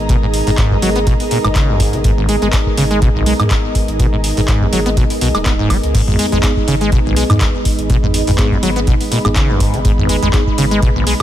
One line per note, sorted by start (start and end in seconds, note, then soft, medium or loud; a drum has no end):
0.00 0.42 G#1 medium
0.00 11.22 G#3 medium
0.00 11.22 B3 medium
0.00 11.22 D#4 medium
0.00 11.22 G#4 medium
0.00 5.93 A#4 medium
0.00 11.22 D#5 medium
0.00 7.46 A#5 medium
0.09 0.17 B2 loud
0.09 kick loud
0.09 closed hi-hat medium
0.23 0.26 G#2 medium
0.34 open hi-hat loud
0.47 0.55 G#1 loud
0.47 0.51 G#2 loud
0.47 open hi-hat medium
0.58 0.73 G#2 medium
0.58 kick loud
0.58 clap loud
0.58 closed hi-hat medium
0.71 0.77 F#2 loud
0.71 kick medium
0.82 1.15 G#1 medium
0.82 0.90 F#3 loud
0.82 open hi-hat loud
0.96 0.99 B3 loud
0.96 closed hi-hat medium
1.07 1.14 B2 loud
1.07 kick loud
1.07 closed hi-hat medium
1.20 open hi-hat medium
1.31 1.39 A#2 medium
1.31 open hi-hat loud
1.44 1.88 G#1 medium
1.44 1.48 G#2 loud
1.44 closed hi-hat medium
1.44 high woodblock medium
1.55 1.70 C#3 medium
1.55 kick loud
1.55 clap loud
1.55 closed hi-hat medium
1.69 1.82 F#2 loud
1.80 1.95 G#2 medium
1.80 kick medium
1.80 open hi-hat loud
1.93 2.37 G#1 medium
1.93 1.99 C#3 medium
1.93 closed hi-hat medium
2.04 2.12 G#2 medium
2.04 kick loud
2.04 closed hi-hat medium
2.18 2.27 G#1 loud
2.29 2.36 G#3 medium
2.29 open hi-hat loud
2.42 2.50 G#1 loud
2.42 2.48 G#3 loud
2.42 closed hi-hat medium
2.53 kick loud
2.53 clap loud
2.53 closed hi-hat medium
2.66 kick medium
2.77 3.10 G#1 medium
2.77 2.85 C#3 loud
2.77 open hi-hat loud
2.91 3.00 G#3 loud
2.91 closed hi-hat medium
3.02 3.09 B2 loud
3.02 kick loud
3.02 closed hi-hat medium
3.15 3.24 G#1 loud
3.15 3.33 B1 loud
3.26 3.34 G#3 medium
3.26 open hi-hat loud
3.40 3.43 G#2 loud
3.40 3.48 G#2 loud
3.40 closed hi-hat medium
3.40 high woodblock medium
3.50 kick loud
3.50 clap loud
3.50 closed hi-hat medium
3.75 kick medium
3.75 open hi-hat loud
3.88 4.32 G#1 medium
3.88 closed hi-hat medium
3.99 4.07 B2 loud
3.99 kick loud
3.99 closed hi-hat medium
4.13 4.16 G#2 medium
4.24 open hi-hat loud
4.37 4.46 G#1 loud
4.37 4.41 G#2 loud
4.37 open hi-hat medium
4.48 4.63 G#2 medium
4.48 kick loud
4.48 clap loud
4.48 closed hi-hat medium
4.61 4.68 F#2 loud
4.61 kick medium
4.73 5.05 G#1 medium
4.73 4.80 F#3 loud
4.73 open hi-hat loud
4.86 4.90 B3 loud
4.86 closed hi-hat medium
4.97 5.04 B2 loud
4.97 kick loud
4.97 closed hi-hat medium
5.10 open hi-hat medium
5.21 5.31 B1 medium
5.21 5.29 B2 medium
5.21 open hi-hat loud
5.35 5.78 D#1 medium
5.35 5.38 G#3 medium
5.35 closed hi-hat medium
5.35 high woodblock medium
5.46 5.53 B3 medium
5.46 kick loud
5.46 clap loud
5.46 closed hi-hat medium
5.59 5.72 G#2 medium
5.70 5.77 G#3 medium
5.70 kick medium
5.70 open hi-hat loud
5.70 high woodblock medium
5.83 5.92 C#2 loud
5.83 closed hi-hat medium
5.94 6.02 G#2 medium
5.94 11.22 B4 medium
5.94 kick loud
5.94 closed hi-hat medium
5.94 crash medium
6.08 6.17 G#1 loud
6.08 mid tom medium
6.19 6.26 G#3 medium
6.19 open hi-hat loud
6.32 6.41 G#1 loud
6.32 6.38 G#3 loud
6.32 closed hi-hat medium
6.32 mid tom medium
6.43 6.52 B3 medium
6.43 6.52 D#4 medium
6.43 6.52 G#4 medium
6.43 kick loud
6.43 clap loud
6.43 closed hi-hat medium
6.57 kick medium
6.68 7.00 G#1 medium
6.68 6.75 C#3 loud
6.68 open hi-hat loud
6.81 6.90 G#3 loud
6.81 closed hi-hat medium
6.92 6.99 B2 loud
6.92 kick loud
6.92 closed hi-hat medium
7.05 7.15 G#1 loud
7.05 7.23 B1 loud
7.16 7.24 G#3 medium
7.16 open hi-hat loud
7.30 7.38 G#2 loud
7.30 7.34 G#2 loud
7.30 7.37 B3 medium
7.30 7.37 D#4 medium
7.30 7.37 G#4 medium
7.30 11.22 B5 medium
7.30 closed hi-hat medium
7.30 mid tom medium
7.30 high woodblock medium
7.41 kick loud
7.41 clap loud
7.41 closed hi-hat medium
7.65 kick medium
7.65 open hi-hat loud
7.79 8.22 G#1 medium
7.79 closed hi-hat medium
7.90 7.97 B2 loud
7.90 kick loud
7.90 closed hi-hat medium
8.03 8.07 G#2 medium
8.03 mid tom medium
8.14 open hi-hat loud
8.27 8.36 G#1 loud
8.27 8.31 G#2 loud
8.27 mid tom medium
8.27 open hi-hat medium
8.38 8.53 G#2 medium
8.38 8.47 B3 medium
8.38 8.47 D#4 medium
8.38 8.47 G#4 medium
8.38 kick loud
8.38 clap loud
8.38 closed hi-hat medium
8.52 8.58 F#2 loud
8.52 kick medium
8.63 8.95 G#1 medium
8.63 8.70 F#3 loud
8.63 open hi-hat loud
8.76 8.80 B3 loud
8.76 closed hi-hat medium
8.87 8.95 B2 loud
8.87 kick loud
8.87 closed hi-hat medium
9.01 open hi-hat medium
9.12 9.19 A#2 medium
9.12 open hi-hat loud
9.25 9.69 G#1 medium
9.25 9.29 G#2 medium
9.25 9.32 B3 medium
9.25 9.32 D#4 medium
9.25 9.32 G#4 loud
9.25 closed hi-hat soft
9.25 high woodblock medium
9.36 9.51 C#3 medium
9.36 kick loud
9.36 clap loud
9.36 closed hi-hat medium
9.49 9.62 F#2 loud
9.60 9.75 G#2 medium
9.60 kick medium
9.60 open hi-hat loud
9.74 10.17 G#1 medium
9.74 9.80 C#3 medium
9.74 closed hi-hat medium
9.85 9.92 G#2 medium
9.85 kick loud
9.85 closed hi-hat medium
9.98 10.07 G#1 loud
9.98 mid tom medium
10.09 10.16 G#3 medium
10.09 open hi-hat loud
10.22 10.31 G#1 loud
10.22 10.29 G#3 loud
10.22 closed hi-hat soft
10.22 mid tom medium
10.33 10.42 B3 medium
10.33 10.42 D#4 medium
10.33 10.42 G#4 medium
10.33 kick loud
10.33 clap loud
10.33 closed hi-hat medium
10.47 kick medium
10.58 10.91 G#1 medium
10.58 10.65 C#3 loud
10.58 open hi-hat loud
10.71 10.80 G#3 loud
10.71 closed hi-hat soft
10.82 10.90 B2 loud
10.82 kick loud
10.82 closed hi-hat medium
10.96 11.05 G#1 loud
10.96 11.14 B1 loud
11.07 11.14 G#3 medium
11.07 open hi-hat loud